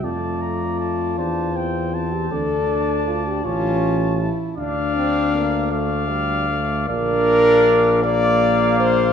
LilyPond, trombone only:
\new Staff \with { instrumentName = "Trombone" } { \time 6/8 \key d \minor \tempo 4. = 53 a4. d'8 c'8 c'8 | d'4. cis'4 r8 | d'8 c'8 bes8 a8 g8 a8 | d'4. bes4. | }